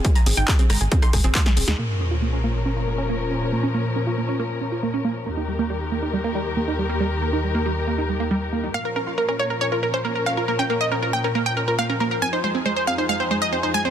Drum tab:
HH |xxoxxxoxxxoxxxox|----------------|----------------|----------------|
CP |----x-------x---|----------------|----------------|----------------|
SD |----r-r--rr--o-o|----------------|----------------|----------------|
BD |o---o---o-o-o---|----------------|----------------|----------------|

HH |----------------|----------------|----------------|----------------|
CP |----------------|----------------|----------------|----------------|
SD |----------------|----------------|----------------|----------------|
BD |----------------|----------------|----------------|----------------|